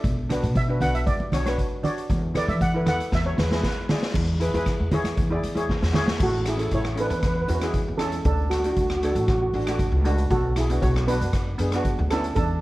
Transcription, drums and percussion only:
0.04 kick loud
0.04 closed hi-hat medium
0.30 cross-stick medium
0.30 closed hi-hat medium
0.30 high conga medium
0.30 low conga medium
0.43 closed hi-hat medium
0.55 kick medium
0.55 closed hi-hat medium
0.55 high conga medium
0.81 closed hi-hat medium
0.81 low conga medium
0.95 closed hi-hat medium
1.07 kick loud
1.07 closed hi-hat medium
1.07 high conga medium
1.20 high conga medium
1.32 cross-stick medium
1.32 closed hi-hat medium
1.32 low conga medium
1.46 cross-stick medium
1.46 closed hi-hat medium
1.46 high conga medium
1.58 kick medium
1.58 closed hi-hat medium
1.84 closed hi-hat medium
1.84 low conga medium
1.98 closed hi-hat medium
2.10 kick loud
2.10 closed hi-hat medium
2.35 cross-stick medium
2.35 closed hi-hat medium
2.35 high conga medium
2.35 low conga medium
2.49 closed hi-hat medium
2.61 kick medium
2.61 closed hi-hat medium
2.61 high conga medium
2.86 cross-stick medium
2.86 closed hi-hat medium
2.86 low conga medium
3.00 closed hi-hat medium
3.12 kick loud
3.12 snare medium
3.38 snare medium
3.38 low conga medium
3.51 snare medium
3.51 high conga medium
3.63 kick medium
3.63 snare medium
3.89 snare medium
3.89 low conga medium
4.03 snare medium
4.14 kick loud
4.14 crash loud
4.14 low conga medium
4.41 closed hi-hat medium
4.54 closed hi-hat medium
4.54 high conga medium
4.66 kick medium
4.66 cross-stick medium
4.66 closed hi-hat medium
4.92 closed hi-hat medium
4.92 high conga medium
4.92 low conga medium
5.04 cross-stick medium
5.04 closed hi-hat medium
5.04 high conga medium
5.17 kick loud
5.17 closed hi-hat medium
5.44 closed hi-hat medium
5.56 closed hi-hat medium
5.56 high conga medium
5.69 kick medium
5.69 snare medium
5.82 snare medium
5.94 snare medium
5.94 low conga medium
6.08 snare medium
6.08 high conga medium
6.20 kick loud
6.20 crash loud
6.46 cross-stick medium
6.46 closed hi-hat loud
6.59 closed hi-hat medium
6.71 kick medium
6.71 closed hi-hat medium
6.85 cross-stick medium
6.97 closed hi-hat medium
7.10 closed hi-hat medium
7.23 kick loud
7.23 cross-stick medium
7.23 closed hi-hat medium
7.48 closed hi-hat medium
7.62 cross-stick medium
7.62 closed hi-hat medium
7.74 kick medium
7.74 closed hi-hat medium
7.99 cross-stick medium
7.99 closed hi-hat medium
8.12 closed hi-hat medium
8.25 kick loud
8.25 closed hi-hat medium
8.51 cross-stick medium
8.51 closed hi-hat medium
8.64 closed hi-hat medium
8.76 kick medium
8.76 closed hi-hat medium
8.90 cross-stick medium
9.03 closed hi-hat medium
9.16 closed hi-hat medium
9.28 kick loud
9.28 cross-stick medium
9.28 closed hi-hat medium
9.54 closed hi-hat medium
9.67 cross-stick loud
9.67 closed hi-hat medium
9.79 kick medium
9.79 closed hi-hat medium
10.05 closed hi-hat medium
10.18 closed hi-hat medium
10.30 kick loud
10.30 closed hi-hat medium
10.56 cross-stick medium
10.56 closed hi-hat medium
10.70 closed hi-hat medium
10.82 kick medium
10.82 closed hi-hat medium
10.96 cross-stick medium
11.08 closed hi-hat medium
11.21 closed hi-hat medium
11.33 kick loud
11.33 cross-stick medium
11.33 closed hi-hat medium
11.59 closed hi-hat medium
11.72 cross-stick medium
11.72 closed hi-hat medium
11.85 kick medium
11.85 closed hi-hat medium
12.10 cross-stick medium
12.10 closed hi-hat medium
12.24 closed hi-hat medium
12.36 kick loud
12.36 closed hi-hat medium

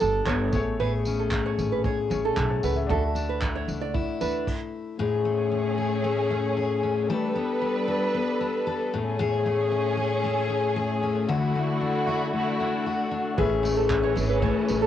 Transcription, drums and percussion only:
0.00 tambourine medium
0.26 kick loud
0.26 clap loud
0.53 kick loud
0.53 tambourine medium
1.05 tambourine medium
1.31 kick loud
1.31 clap loud
1.59 tambourine medium
1.84 kick loud
2.11 tambourine medium
2.37 kick loud
2.37 clap loud
2.63 tambourine medium
2.90 kick loud
3.16 tambourine medium
3.42 kick loud
3.42 clap loud
3.69 tambourine soft
3.95 kick loud
4.21 tambourine medium
4.47 kick loud
4.47 crash medium
13.38 kick loud
13.65 tambourine medium
13.90 kick loud
13.90 clap loud
14.17 tambourine medium
14.42 kick loud
14.68 tambourine medium

